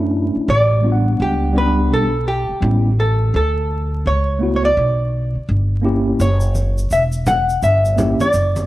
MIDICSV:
0, 0, Header, 1, 6, 480
1, 0, Start_track
1, 0, Tempo, 714286
1, 325, Time_signature, 4, 2, 24, 8
1, 5823, End_track
2, 0, Start_track
2, 0, Title_t, "Hollow-body jazz guitar"
2, 0, Program_c, 0, 26
2, 335, Note_on_c, 0, 74, 102
2, 820, Note_on_c, 0, 67, 80
2, 824, Note_off_c, 0, 74, 0
2, 1059, Note_off_c, 0, 67, 0
2, 1060, Note_on_c, 0, 71, 87
2, 1299, Note_off_c, 0, 71, 0
2, 1300, Note_on_c, 0, 69, 93
2, 1516, Note_off_c, 0, 69, 0
2, 1531, Note_on_c, 0, 67, 85
2, 2012, Note_off_c, 0, 67, 0
2, 2015, Note_on_c, 0, 69, 79
2, 2250, Note_off_c, 0, 69, 0
2, 2258, Note_on_c, 0, 69, 85
2, 2737, Note_on_c, 0, 73, 89
2, 2745, Note_off_c, 0, 69, 0
2, 3058, Note_off_c, 0, 73, 0
2, 3066, Note_on_c, 0, 73, 65
2, 3120, Note_off_c, 0, 73, 0
2, 3125, Note_on_c, 0, 74, 85
2, 3813, Note_off_c, 0, 74, 0
2, 4175, Note_on_c, 0, 73, 87
2, 4654, Note_on_c, 0, 76, 88
2, 4664, Note_off_c, 0, 73, 0
2, 4718, Note_off_c, 0, 76, 0
2, 4889, Note_on_c, 0, 78, 97
2, 5129, Note_off_c, 0, 78, 0
2, 5132, Note_on_c, 0, 76, 95
2, 5515, Note_off_c, 0, 76, 0
2, 5518, Note_on_c, 0, 74, 91
2, 5823, Note_off_c, 0, 74, 0
2, 5823, End_track
3, 0, Start_track
3, 0, Title_t, "Tine electric piano"
3, 0, Program_c, 1, 4
3, 0, Note_on_c, 1, 57, 72
3, 0, Note_on_c, 1, 61, 57
3, 0, Note_on_c, 1, 62, 67
3, 0, Note_on_c, 1, 64, 76
3, 316, Note_off_c, 1, 57, 0
3, 320, Note_off_c, 1, 61, 0
3, 325, Note_off_c, 1, 62, 0
3, 329, Note_off_c, 1, 64, 0
3, 548, Note_on_c, 1, 55, 56
3, 558, Note_on_c, 1, 59, 55
3, 566, Note_on_c, 1, 62, 54
3, 573, Note_on_c, 1, 65, 53
3, 619, Note_on_c, 1, 78, 64
3, 623, Note_off_c, 1, 65, 0
3, 1022, Note_off_c, 1, 55, 0
3, 1030, Note_on_c, 1, 55, 78
3, 1031, Note_off_c, 1, 59, 0
3, 1039, Note_on_c, 1, 59, 73
3, 1045, Note_on_c, 1, 61, 56
3, 1055, Note_on_c, 1, 67, 75
3, 1082, Note_off_c, 1, 62, 0
3, 1090, Note_on_c, 1, 62, 69
3, 1100, Note_off_c, 1, 61, 0
3, 1276, Note_off_c, 1, 78, 0
3, 1397, Note_off_c, 1, 55, 0
3, 1402, Note_off_c, 1, 59, 0
3, 1410, Note_off_c, 1, 67, 0
3, 1428, Note_off_c, 1, 62, 0
3, 1752, Note_on_c, 1, 55, 60
3, 1760, Note_on_c, 1, 59, 51
3, 1767, Note_on_c, 1, 61, 54
3, 1777, Note_on_c, 1, 64, 61
3, 1944, Note_off_c, 1, 55, 0
3, 1948, Note_off_c, 1, 59, 0
3, 1952, Note_off_c, 1, 61, 0
3, 1957, Note_off_c, 1, 64, 0
3, 2950, Note_on_c, 1, 57, 66
3, 2959, Note_on_c, 1, 59, 61
3, 2966, Note_on_c, 1, 64, 63
3, 2976, Note_on_c, 1, 66, 75
3, 3143, Note_off_c, 1, 57, 0
3, 3148, Note_off_c, 1, 59, 0
3, 3152, Note_off_c, 1, 64, 0
3, 3157, Note_off_c, 1, 66, 0
3, 3909, Note_on_c, 1, 58, 72
3, 3917, Note_on_c, 1, 61, 70
3, 3925, Note_on_c, 1, 64, 68
3, 3934, Note_on_c, 1, 67, 81
3, 4217, Note_off_c, 1, 58, 0
3, 4221, Note_off_c, 1, 61, 0
3, 4225, Note_off_c, 1, 64, 0
3, 4229, Note_off_c, 1, 67, 0
3, 5349, Note_on_c, 1, 58, 70
3, 5359, Note_on_c, 1, 61, 67
3, 5367, Note_on_c, 1, 64, 60
3, 5376, Note_on_c, 1, 67, 81
3, 5543, Note_off_c, 1, 58, 0
3, 5548, Note_off_c, 1, 61, 0
3, 5552, Note_off_c, 1, 64, 0
3, 5556, Note_off_c, 1, 67, 0
3, 5823, End_track
4, 0, Start_track
4, 0, Title_t, "Upright bass"
4, 0, Program_c, 2, 32
4, 0, Note_on_c, 2, 42, 92
4, 216, Note_off_c, 2, 42, 0
4, 324, Note_on_c, 2, 33, 93
4, 780, Note_off_c, 2, 33, 0
4, 805, Note_on_c, 2, 37, 85
4, 1284, Note_off_c, 2, 37, 0
4, 1284, Note_on_c, 2, 35, 87
4, 1655, Note_off_c, 2, 35, 0
4, 1762, Note_on_c, 2, 33, 107
4, 2219, Note_off_c, 2, 33, 0
4, 2244, Note_on_c, 2, 38, 91
4, 2700, Note_off_c, 2, 38, 0
4, 2726, Note_on_c, 2, 37, 81
4, 3181, Note_off_c, 2, 37, 0
4, 3205, Note_on_c, 2, 35, 87
4, 3576, Note_off_c, 2, 35, 0
4, 3687, Note_on_c, 2, 31, 96
4, 4142, Note_off_c, 2, 31, 0
4, 4165, Note_on_c, 2, 30, 100
4, 4621, Note_off_c, 2, 30, 0
4, 4641, Note_on_c, 2, 28, 84
4, 5098, Note_off_c, 2, 28, 0
4, 5124, Note_on_c, 2, 31, 86
4, 5495, Note_off_c, 2, 31, 0
4, 5604, Note_on_c, 2, 30, 88
4, 5823, Note_off_c, 2, 30, 0
4, 5823, End_track
5, 0, Start_track
5, 0, Title_t, "Muted upright bass strokes"
5, 238, Note_on_c, 9, 29, 47
5, 305, Note_off_c, 9, 29, 0
5, 1675, Note_on_c, 9, 29, 42
5, 1743, Note_off_c, 9, 29, 0
5, 3594, Note_on_c, 9, 29, 38
5, 3661, Note_off_c, 9, 29, 0
5, 5515, Note_on_c, 9, 29, 39
5, 5582, Note_off_c, 9, 29, 0
5, 5823, End_track
6, 0, Start_track
6, 0, Title_t, "Drums"
6, 4168, Note_on_c, 9, 82, 61
6, 4236, Note_off_c, 9, 82, 0
6, 4304, Note_on_c, 9, 82, 42
6, 4371, Note_off_c, 9, 82, 0
6, 4402, Note_on_c, 9, 63, 37
6, 4402, Note_on_c, 9, 82, 35
6, 4469, Note_off_c, 9, 63, 0
6, 4469, Note_off_c, 9, 82, 0
6, 4557, Note_on_c, 9, 82, 41
6, 4624, Note_off_c, 9, 82, 0
6, 4643, Note_on_c, 9, 82, 63
6, 4710, Note_off_c, 9, 82, 0
6, 4786, Note_on_c, 9, 82, 42
6, 4853, Note_off_c, 9, 82, 0
6, 4883, Note_on_c, 9, 63, 46
6, 4883, Note_on_c, 9, 64, 66
6, 4883, Note_on_c, 9, 82, 52
6, 4950, Note_off_c, 9, 63, 0
6, 4950, Note_off_c, 9, 64, 0
6, 4950, Note_off_c, 9, 82, 0
6, 5036, Note_on_c, 9, 82, 38
6, 5103, Note_off_c, 9, 82, 0
6, 5126, Note_on_c, 9, 82, 64
6, 5193, Note_off_c, 9, 82, 0
6, 5277, Note_on_c, 9, 82, 41
6, 5344, Note_off_c, 9, 82, 0
6, 5364, Note_on_c, 9, 64, 65
6, 5364, Note_on_c, 9, 82, 42
6, 5431, Note_off_c, 9, 64, 0
6, 5431, Note_off_c, 9, 82, 0
6, 5512, Note_on_c, 9, 63, 59
6, 5512, Note_on_c, 9, 82, 40
6, 5579, Note_off_c, 9, 63, 0
6, 5579, Note_off_c, 9, 82, 0
6, 5599, Note_on_c, 9, 82, 64
6, 5666, Note_off_c, 9, 82, 0
6, 5753, Note_on_c, 9, 63, 57
6, 5753, Note_on_c, 9, 82, 36
6, 5820, Note_off_c, 9, 63, 0
6, 5820, Note_off_c, 9, 82, 0
6, 5823, End_track
0, 0, End_of_file